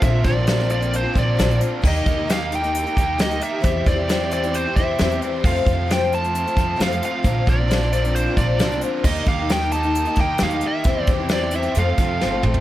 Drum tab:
CC |----------------|x---------------|----------------|x---------------|
HH |x-x-x-xxx-x-xxx-|-xx-x-xxxxx-xxx-|x-x-x-xxx-x-xxx-|-xx-x-xxxxx-xxx-|
SD |----oo------o---|----oo------o---|----o-------o---|----o-------o---|
T2 |----------------|----------------|----------------|----------------|
FT |----------------|----------------|----------------|----------------|
BD |o-o-------o-----|o-o-------o-----|o-o-------o-----|o-o-------o-----|

CC |----------------|x---------------|----------------|
HH |x-x-x-xxx-x-xxx-|-xx-x-xxxxx-xxx-|x-x-x-xxx-x-----|
SD |----oo------o---|----oo------o---|----o-------o---|
T2 |----------------|----------------|--------------o-|
FT |----------------|----------------|---------------o|
BD |o-o-------o-----|o-o-------o-----|o-o-------o-----|